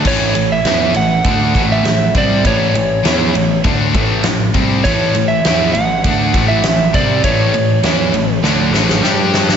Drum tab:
CC |x---------------|----------------|----------------|----------------|
RD |--x-x-x-x-x-x-x-|x-x-x-x-x-x-x-x-|x-x-x-x-x-x-x-x-|x-x-x-x---------|
SD |----o-------o---|----o-------o---|----o-------o---|----o---o-ooo-oo|
BD |o-------o-o---o-|o-------o-o---o-|o-------o-o---o-|o---------------|